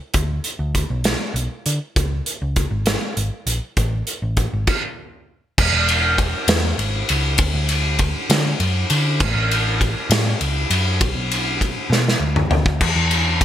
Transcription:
0.14 D2, kick, closed hi-hat
0.44 closed hi-hat
0.59 D2
0.75 kick, closed hi-hat
0.90 B1
1.04 snare, closed hi-hat
1.34 B1, closed hi-hat
1.66 D3, closed hi-hat
1.96 C#2, kick, closed hi-hat
2.26 closed hi-hat
2.42 C#2
2.56 kick, closed hi-hat
2.71 G#1
2.86 snare, closed hi-hat
3.17 G#1, closed hi-hat
3.46 A#1, closed hi-hat
3.77 A1, kick, closed hi-hat
4.07 closed hi-hat
4.22 A1
4.37 kick, closed hi-hat
4.53 G#1
4.67 kick, crash
5.58 E1, kick, crash
5.72 E1
5.89 ride
6.18 kick, ride
6.48 E2, snare, ride
6.78 G#1, ride
7.09 C#2, ride
7.38 D2, kick, ride
7.54 D2
7.69 ride
7.99 kick, ride
8.30 D3, snare, ride
8.60 F#2, ride
8.90 D3, ride
9.20 A1, kick, crash
9.35 A1
9.51 ride
9.81 kick, ride
10.10 A2, snare, ride
10.41 C#2, ride
10.70 F#2, ride
11.01 B1, kick, ride
11.15 B1
11.31 ride
11.61 kick, ride
11.90 B2, snare
12.08 snare
12.20 D2
12.36 mid tom
12.50 D2, floor tom
12.66 kick
12.81 E2, kick, crash
12.96 E2
13.11 ride
13.41 kick, ride

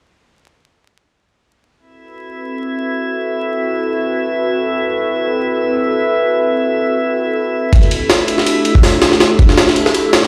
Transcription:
1.79 C4 E4 F#4 A4 B4 E5
7.73 A3 D4 E4 F#4 G4 A4, kick, ride
7.83 ride
7.91 ride
8.10 snare, ride
8.28 ride
8.38 snare
8.47 ride
8.65 ride
8.75 kick
8.83 snare, open hi-hat
9.02 snare, ride
9.12 snare
9.20 snare, ride
9.39 kick, ride
9.49 snare
9.57 snare, ride
9.68 snare
9.76 ride
9.86 snare
9.94 ride
10.13 snare, ride
10.23 snare

